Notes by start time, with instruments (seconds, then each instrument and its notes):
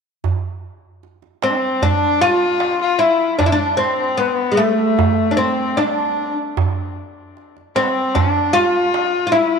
0.24 darbuka dum
1.03 darbuka ka
1.22 darbuka ka
1.42 kamancheh C4, oud C4, darbuka tek
1.50 kamancheh D4
1.56 kamancheh C4
1.62 darbuka ka
1.82 kamancheh D4, oud D4, darbuka dum
2.01 darbuka ka
2.20 oud F4, kamancheh F4, darbuka ka
2.60 darbuka tek
2.80 kamancheh F4, darbuka ka
2.99 oud E4, kamancheh E4
3.39 oud D4, kamancheh D4, darbuka dum
3.46 oud E4
3.52 oud D4, kamancheh D4
3.74 oud C4, kamancheh D4
3.81 kamancheh C4
4.17 oud B3, kamancheh B3, darbuka ka
4.28 kamancheh C4
4.35 kamancheh B3
4.39 darbuka ka
4.52 oud G#3
4.57 oud A3, kamancheh A3
4.79 darbuka ka
4.99 darbuka dum
5.19 darbuka ka
5.31 oud D4
5.37 oud C4, kamancheh C4, darbuka ka
5.77 oud D4, kamancheh D4, darbuka tek
5.98 darbuka ka
6.57 darbuka dum
7.37 darbuka ka
7.57 darbuka ka
7.76 kamancheh C4, oud C4, darbuka tek
7.83 kamancheh B3
7.89 kamancheh C4
7.95 darbuka ka
8.14 kamancheh D4, oud D4, darbuka dum
8.36 darbuka ka
8.53 oud F4, kamancheh F4
8.94 darbuka tek
9.14 darbuka ka
9.27 oud F4
9.32 oud E4, kamancheh E4